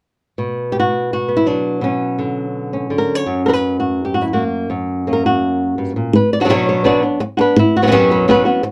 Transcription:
0.38 B2
0.72 G4
0.80 F#4
1.13 F#4
1.28 B3
1.37 E4
1.46 F#3 D4
1.81 B2 C#4
2.19 D3
2.73 C#4
2.90 D3
2.98 A#4
3.15 C#5
3.26 F#2
3.46 A#4 B4
3.53 B4
3.80 F#4
4.05 G4
4.14 F#4
4.22 E4
4.33 A#3 F#4
4.70 F#2
5.07 A#3 C#4
5.13 A#4
5.26 F#4
5.78 G2
5.96 A#2
6.13 B4, muted nylon-string guitar stroke
6.33 D5
6.40 F#3 B3 D4 F#4
6.45 F#3 B3 D4 F#4
6.49 B2 F#3 B3 D4 C#5
6.69 C#5
6.84 B2 F#3 B3 D4 F#4 D5
7.02 B3 D4
7.20 muted nylon-string guitar stroke
7.37 B3 D4 F#4 B4
7.56 E4, muted nylon-string guitar stroke
7.77 F#4
7.82 B2 F#3 B3 C#4 F#4
7.87 B2 F#3 B3 C#4 F#4
7.92 F#2 B2 F#3 B3 C#4 F#4 G4
8.11 B4
8.28 F#2 B2 F#3 B3 C#4 B4
8.45 F#3 B3 C#4 F#4
8.63 muted nylon-string guitar stroke

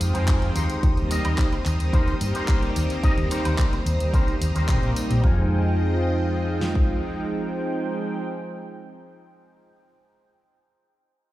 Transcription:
Already playing: G#3 F5 D#6
0.00 F2 F3 G#3 C4 D#4 G5, open hi-hat, tambourine
0.14 F2 D#4 F4 G#4 C5, closed hi-hat, tambourine
0.28 kick, clap, closed hi-hat, tambourine
0.42 closed hi-hat, tambourine
0.55 D#2 D#4 G4 A#4 C5 A#5, open hi-hat, tambourine
0.70 closed hi-hat, tambourine
0.83 D#2, kick, closed hi-hat, tambourine
0.97 G3 A#3 C4 D#4 G4, closed hi-hat, tambourine
1.10 D#4 G4 A#4 D#5, open hi-hat, tambourine
1.24 D#2 G3 A#3 C4 D#4 C5, closed hi-hat, tambourine, high woodblock
1.38 kick, clap, closed hi-hat, tambourine
1.53 closed hi-hat, tambourine, high woodblock
1.66 D#2, clap, open hi-hat, tambourine
1.80 D#2 G3 A#3 C4 D#4 G4, closed hi-hat, tambourine
1.93 D#2 D#4 G4 A#4 C5, kick, closed hi-hat, tambourine
2.08 closed hi-hat, tambourine
2.21 G2 G3 A#3 C4 D#4 G4, open hi-hat, tambourine
2.34 D#4 G4 A#4 C5, closed hi-hat, tambourine
2.48 kick, clap, closed hi-hat, tambourine
2.63 closed hi-hat, tambourine
2.76 D#2, open hi-hat, tambourine
2.90 closed hi-hat, tambourine
3.03 D#4 G4 A#4 D#5, muted fingered electric bass stroke, kick, closed hi-hat, tambourine
3.17 D#2 G3 A#3 C4 D#4 G4, closed hi-hat, tambourine
3.30 D#4 G4 A#4 C5, open hi-hat, tambourine
3.45 D#2 G3 A#3 C4 D#4 C5, closed hi-hat, tambourine, high woodblock
3.58 kick, clap, closed hi-hat, tambourine
3.73 closed hi-hat, tambourine, high woodblock
3.86 D#2, open hi-hat, tambourine
4.00 D#2 G3 A#3 C4 D#4 G4, closed hi-hat, tambourine
4.13 D#4 G4 A#4 C5, kick, closed hi-hat, tambourine
4.28 muted fingered electric bass stroke, closed hi-hat, tambourine
4.41 D#2, open hi-hat, tambourine
4.55 D#2 G3 A#3 C4 D#4 G4 A#4 C5, closed hi-hat, tambourine
4.69 A#1, kick, clap, closed hi-hat, tambourine
4.83 A#1, closed hi-hat, tambourine
4.96 G3 A#3 C4 D#4 G4, muted fingered electric bass stroke, open hi-hat, tambourine
5.10 A#1, closed hi-hat, tambourine
5.21 F2 F3 G#3 C4 D#4 F4 D#5, kick
5.25 G#4 G5
6.61 snare
6.75 kick

